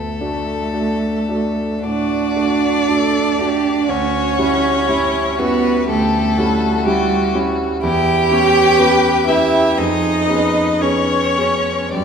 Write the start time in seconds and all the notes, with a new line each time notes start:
Already playing: D2 A3 A4
0.21 A3 D4 F#4
0.73 A3 D4 F#4
1.29 A3 D4 F#4
1.83 A2 D4 F#4 D5
2.36 A3 D4 F#4
2.87 A3 D4 F#4 A4
3.39 A3 D4 F#4 G4
3.87 D2 C#4 F#4 C#5
4.38 G3 C#4 E4
4.87 G3 C#4 E4
5.38 G3 B3 C#4 E4 F#4 B4
5.88 D2 A3 G4 A4
6.38 G3 C#4 E4 F#4
6.85 G3 C#4 E4 G4
7.35 G3 C#4 E4
7.83 E2 E4 G4 G5
8.31 B3 C#4 G4 C#5
8.79 B3 C#4 G4 B4
9.27 B3 C#4 E4 G4 E5
9.77 F2 D#4 G#4 D#5
10.28 B3 C#4 G#4 B4
10.81 B3 C#4 G#4 C#5
11.38 B3 C#4 G#4
11.93 F#2 G3 G4 D5